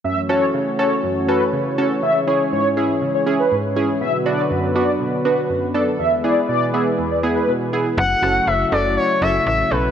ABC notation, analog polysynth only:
X:1
M:4/4
L:1/16
Q:1/4=121
K:F#m
V:1 name="Analog polysynth"
e2 c2 z2 c2 z2 B2 z2 c z | e2 c2 c2 e z2 c z B2 z3 | e2 d2 z2 d2 z2 B2 z2 d z | e2 d2 d2 e z2 d z B2 z3 |
z16 |]